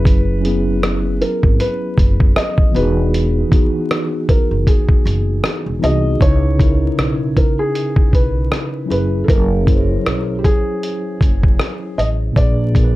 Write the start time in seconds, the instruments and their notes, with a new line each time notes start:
Already playing: upright bass F#1, tine electric piano F#3 C#4 E4 G#4 B4, felt piano B4
0.05 kick, closed hi-hat
0.40 tine electric piano F#3 C#4 E4
0.45 tine electric piano B3 G#4, closed hi-hat
0.83 cross-stick, closed hi-hat
1.21 felt piano A#4, closed hi-hat
1.43 upright bass G#1, kick
1.60 felt piano B4, closed hi-hat
1.98 upright bass F#1, kick, closed hi-hat
2.20 kick
2.36 felt piano D#5, cross-stick, closed hi-hat
2.58 kick
2.71 upright bass E1, tine electric piano E3 B3 D#4
2.76 tine electric piano F#4 G#4, felt piano B4, closed hi-hat
3.14 closed hi-hat
3.49 tine electric piano E3 B3 D#4, kick
3.53 tine electric piano F#4 G#4, closed hi-hat
3.91 cross-stick, closed hi-hat
4.29 felt piano A#4, kick, closed hi-hat
4.51 upright bass F#1
4.67 felt piano G#4, kick, closed hi-hat
4.89 kick
5.05 upright bass F#1, closed hi-hat
5.44 cross-stick, closed hi-hat
5.66 upright bass E1
5.79 upright bass C2, tine electric piano E3 B3 D#4
5.84 tine electric piano F#4 G#4, felt piano D#5, closed hi-hat
6.17 upright bass C#2, tine electric piano C#3 C#4 D#4, kick
6.22 tine electric piano E4 B4, felt piano C#5, closed hi-hat
6.55 tine electric piano C#3 C#4 D#4
6.59 tine electric piano E4 A#4, kick, closed hi-hat
6.98 upright bass B1, cross-stick, closed hi-hat
7.37 felt piano A#4, kick, closed hi-hat
7.59 felt piano G#4
7.75 closed hi-hat
7.96 kick
8.13 upright bass B1, felt piano B4, kick, closed hi-hat
8.52 cross-stick, closed hi-hat
8.86 tine electric piano F#3 C#4 E4
8.90 upright bass F#1, tine electric piano G#4 A#4, felt piano B4, closed hi-hat
8.98 tine electric piano B4
9.24 felt piano A4
9.28 upright bass F#1, felt piano A#4, kick, closed hi-hat
9.63 tine electric piano F#3 C#4 E4, kick
9.68 tine electric piano G#4 C5, closed hi-hat
9.77 tine electric piano C#5
10.06 upright bass B1, cross-stick, closed hi-hat
10.39 felt piano G4
10.44 felt piano G#4, kick, closed hi-hat
10.83 closed hi-hat
11.21 upright bass F#1, kick, closed hi-hat
11.43 kick
11.59 cross-stick, closed hi-hat
11.98 upright bass A1, felt piano D#5, closed hi-hat
12.32 tine electric piano A#2 A#3 D4
12.36 upright bass A#1, tine electric piano G#4 B4, felt piano D5, kick, closed hi-hat
12.71 tine electric piano A#2 A#3 D4, kick
12.76 tine electric piano G#4 A#4, closed hi-hat
12.84 tine electric piano B4